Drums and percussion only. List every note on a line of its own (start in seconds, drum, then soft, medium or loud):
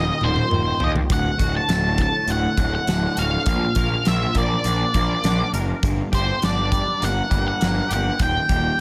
0.21 high tom medium
0.36 high tom medium
0.51 mid tom medium
0.80 floor tom medium
0.96 floor tom medium
1.10 kick loud
1.10 closed hi-hat medium
1.39 kick medium
1.39 closed hi-hat medium
1.69 snare medium
1.69 closed hi-hat medium
1.98 kick medium
1.98 closed hi-hat medium
2.28 closed hi-hat medium
2.57 kick medium
2.57 closed hi-hat medium
2.87 snare loud
2.87 closed hi-hat medium
3.17 closed hi-hat medium
3.46 kick loud
3.46 closed hi-hat medium
3.75 kick medium
3.75 closed hi-hat medium
4.05 snare loud
4.05 closed hi-hat medium
4.35 kick medium
4.35 closed hi-hat medium
4.64 closed hi-hat medium
4.94 kick medium
4.94 closed hi-hat medium
5.24 snare loud
5.24 closed hi-hat medium
5.54 closed hi-hat medium
5.83 kick loud
5.83 closed hi-hat medium
6.13 kick medium
6.13 closed hi-hat medium
6.42 snare medium
6.42 closed hi-hat medium
6.72 kick medium
6.72 closed hi-hat medium
7.02 closed hi-hat medium
7.31 kick medium
7.31 closed hi-hat medium
7.61 snare loud
7.61 closed hi-hat medium
7.91 closed hi-hat medium
8.19 kick medium
8.19 closed hi-hat medium
8.49 kick medium
8.49 closed hi-hat medium